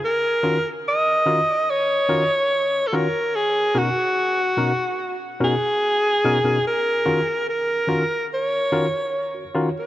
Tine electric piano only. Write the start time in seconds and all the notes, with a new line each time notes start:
0.43 D#3 C#4 F4 F#4 A#4
1.26 D#3 C#4 F4 F#4 A#4
2.09 D#3 C#4 F4 F#4 A#4
2.92 D#3 C#4 F4 F#4 A#4
3.75 B2 C#4 D#4 F#4 A#4
4.57 B2 C#4 D#4 F#4 A#4
5.40 B2 C#4 D#4 F#4 A#4
6.24 B2 C#4 D#4 F#4 A#4
6.44 B2 C#4 D#4 F#4 A#4
7.06 D#3 C#4 F4 F#4 A#4
7.88 D#3 C#4 F4 F#4 A#4
8.72 D#3 C#4 F4 F#4 A#4
9.35 F#4 A#4
9.55 D#3 C#4 F4 F#4 A#4